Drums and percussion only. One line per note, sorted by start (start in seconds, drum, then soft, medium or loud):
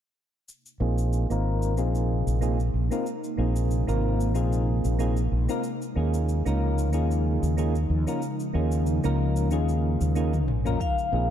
0.49 cabasa soft
0.66 cabasa soft
0.98 cabasa medium
1.13 cabasa soft
1.31 cabasa soft
1.62 cabasa medium
1.77 cabasa soft
1.95 cabasa soft
2.28 cabasa medium
2.42 cabasa soft
2.60 cabasa soft
2.92 cabasa medium
3.06 cabasa soft
3.24 cabasa soft
3.56 cabasa medium
3.71 cabasa soft
3.89 cabasa soft
4.21 cabasa medium
4.35 cabasa medium
4.53 cabasa soft
4.85 cabasa medium
4.99 cabasa medium
5.17 cabasa soft
5.49 cabasa medium
5.64 cabasa medium
5.82 cabasa soft
6.14 cabasa medium
6.29 cabasa soft
6.46 cabasa soft
6.78 cabasa medium
6.93 cabasa medium
7.11 cabasa soft
7.43 cabasa medium
7.58 cabasa medium
7.75 cabasa soft
8.08 cabasa medium
8.22 cabasa medium
8.40 cabasa soft
8.72 cabasa medium
8.86 cabasa medium
9.04 cabasa soft
9.36 cabasa medium
9.51 cabasa medium
9.69 cabasa soft
10.01 cabasa medium
10.16 cabasa medium
10.33 high tom soft
10.33 cabasa soft
10.48 mid tom medium
10.66 mid tom medium
10.66 cabasa medium
10.80 kick medium
10.80 cabasa medium
10.98 cabasa soft